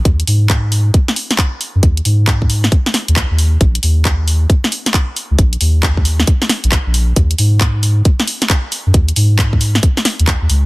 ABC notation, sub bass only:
X:1
M:4/4
L:1/16
Q:"Swing 16ths" 1/4=135
K:Ebdor
V:1 name="Sub bass" clef=bass
E,, z A,,6 z6 z G,, | E,, z A,,6 z3 E,, z E,,3 | B,,, z E,,6 z6 z D,, | B,,, z E,,6 z3 B,,, z B,,,3 |
E,, z A,,6 z6 z G,, | E,, z A,,6 z3 E,, z E,, D,, z |]